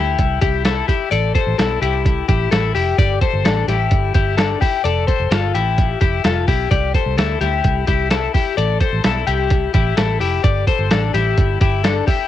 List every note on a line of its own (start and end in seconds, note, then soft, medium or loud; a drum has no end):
0.00 0.15 D2 medium
0.00 0.40 E4 medium
0.00 0.39 G4 medium
0.18 0.38 C2 medium
0.18 kick medium
0.18 closed hi-hat medium
0.41 0.82 C2 medium
0.41 0.65 E4 medium
0.41 0.65 G4 medium
0.41 kick medium
0.41 closed hi-hat medium
0.65 0.88 E4 medium
0.65 0.88 A4 medium
0.65 snare medium
0.65 closed hi-hat medium
0.88 1.11 E4 medium
0.88 1.12 G4 medium
0.88 kick medium
0.88 closed hi-hat medium
1.11 1.32 A1 medium
1.11 1.34 A4 medium
1.11 1.34 D5 medium
1.11 closed hi-hat medium
1.35 1.57 A4 medium
1.35 1.58 C5 medium
1.35 kick medium
1.35 closed hi-hat medium
1.47 1.57 A1 medium
1.58 1.78 B1 medium
1.58 1.81 E4 medium
1.58 1.81 A4 medium
1.58 snare medium
1.58 closed hi-hat medium
1.82 2.22 C2 medium
1.82 2.26 E4 medium
1.82 2.26 G4 medium
1.82 closed hi-hat medium
2.06 kick medium
2.06 closed hi-hat medium
2.29 2.49 A1 medium
2.29 2.51 E4 medium
2.29 2.51 G4 medium
2.29 kick medium
2.29 closed hi-hat medium
2.51 2.72 A1 medium
2.51 2.74 E4 medium
2.51 2.74 A4 medium
2.51 snare medium
2.51 closed hi-hat medium
2.75 2.95 F1 medium
2.75 2.98 E4 medium
2.75 2.98 G4 medium
2.75 open hi-hat medium
2.98 3.18 G1 loud
2.98 3.22 G4 medium
2.98 3.21 D5 medium
2.98 kick loud
2.98 closed hi-hat medium
3.21 3.44 A4 medium
3.21 3.45 C5 medium
3.21 kick medium
3.21 closed hi-hat medium
3.33 3.43 G1 medium
3.44 3.64 A1 medium
3.44 3.69 D4 medium
3.44 3.68 A4 medium
3.44 snare medium
3.44 closed hi-hat medium
3.68 3.88 A1 medium
3.68 4.13 E4 medium
3.68 4.12 G4 medium
3.68 snare soft
3.68 closed hi-hat medium
3.91 4.11 G1 medium
3.91 kick medium
3.91 closed hi-hat medium
4.15 4.55 G1 medium
4.15 4.38 E4 medium
4.15 4.37 G4 medium
4.15 kick medium
4.15 closed hi-hat medium
4.37 4.62 D4 medium
4.37 4.60 A4 medium
4.37 snare medium
4.37 closed hi-hat medium
4.61 4.84 E4 medium
4.61 4.85 G4 medium
4.61 kick medium
4.61 open hi-hat medium
4.84 5.05 F1 medium
4.84 5.07 A4 medium
4.84 5.07 D5 medium
4.84 closed hi-hat medium
5.07 5.30 A4 medium
5.07 5.31 C5 medium
5.07 kick medium
5.07 closed hi-hat medium
5.20 5.30 F1 medium
5.31 5.51 G1 medium
5.31 5.55 F4 medium
5.31 5.54 A4 medium
5.31 snare loud
5.31 closed hi-hat medium
5.54 5.94 A1 medium
5.54 5.99 E4 medium
5.54 5.98 G4 medium
5.54 closed hi-hat medium
5.78 kick medium
5.78 closed hi-hat medium
6.01 6.21 F1 medium
6.01 6.25 E4 medium
6.01 6.24 G4 medium
6.01 kick medium
6.01 closed hi-hat medium
6.24 6.44 F1 medium
6.24 6.48 F4 medium
6.24 6.48 A4 medium
6.24 snare medium
6.24 closed hi-hat medium
6.48 6.68 B1 medium
6.48 6.71 E4 medium
6.48 6.70 G4 medium
6.48 kick medium
6.48 open hi-hat medium
6.71 6.91 C2 medium
6.71 6.95 G4 medium
6.71 6.94 D5 medium
6.71 kick loud
6.71 closed hi-hat medium
6.94 7.17 A4 soft
6.94 7.18 C5 medium
6.94 kick medium
6.94 closed hi-hat medium
7.06 7.16 C2 medium
7.18 7.38 D2 medium
7.18 7.40 E4 medium
7.18 7.40 A4 medium
7.18 snare loud
7.18 closed hi-hat medium
7.41 7.61 D2 medium
7.41 7.85 E4 medium
7.41 7.85 G4 medium
7.41 snare soft
7.41 closed hi-hat medium
7.64 7.85 C2 medium
7.64 kick medium
7.64 closed hi-hat medium
7.87 8.27 C2 medium
7.87 8.10 E4 medium
7.87 8.10 G4 medium
7.87 kick medium
7.87 closed hi-hat medium
8.10 8.34 E4 medium
8.10 8.34 A4 medium
8.10 snare medium
8.10 closed hi-hat medium
8.34 8.57 E4 medium
8.34 8.58 G4 medium
8.34 kick medium
8.34 open hi-hat medium
8.57 8.78 A1 medium
8.57 8.80 A4 medium
8.57 8.80 D5 medium
8.57 closed hi-hat medium
8.80 9.03 A4 medium
8.80 9.04 C5 medium
8.80 kick medium
8.80 closed hi-hat medium
8.93 9.03 A1 medium
9.04 9.24 B1 medium
9.04 9.27 E4 medium
9.04 9.26 A4 medium
9.04 snare medium
9.04 closed hi-hat medium
9.27 9.67 C2 medium
9.27 9.72 E4 medium
9.27 9.71 G4 medium
9.27 closed hi-hat medium
9.50 kick medium
9.50 closed hi-hat medium
9.74 9.94 A1 medium
9.74 9.97 E4 medium
9.74 9.97 G4 medium
9.74 kick medium
9.74 closed hi-hat medium
9.97 10.17 A1 medium
9.97 10.20 E4 medium
9.97 10.20 A4 medium
9.97 snare medium
9.97 closed hi-hat medium
10.20 10.40 F1 medium
10.20 10.43 E4 medium
10.20 10.43 G4 medium
10.20 open hi-hat medium
10.44 10.64 G1 medium
10.44 10.68 G4 medium
10.44 10.67 D5 medium
10.44 kick loud
10.44 closed hi-hat medium
10.67 10.90 A4 soft
10.67 10.91 C5 medium
10.67 kick medium
10.67 closed hi-hat medium
10.79 10.89 G1 medium
10.91 11.11 A1 medium
10.91 11.14 D4 medium
10.91 11.14 A4 medium
10.91 snare loud
10.91 closed hi-hat medium
11.14 11.34 A1 medium
11.14 11.58 E4 medium
11.14 11.58 G4 medium
11.14 snare soft
11.14 closed hi-hat medium
11.38 11.57 G1 medium
11.38 kick medium
11.38 closed hi-hat medium
11.61 12.00 G1 medium
11.61 11.84 E4 medium
11.61 11.84 G4 medium
11.61 kick medium
11.61 closed hi-hat medium
11.84 12.08 D4 medium
11.84 12.06 A4 medium
11.84 snare medium
11.84 closed hi-hat medium
12.07 12.28 E4 medium
12.07 12.28 G4 medium
12.07 kick medium
12.07 open hi-hat medium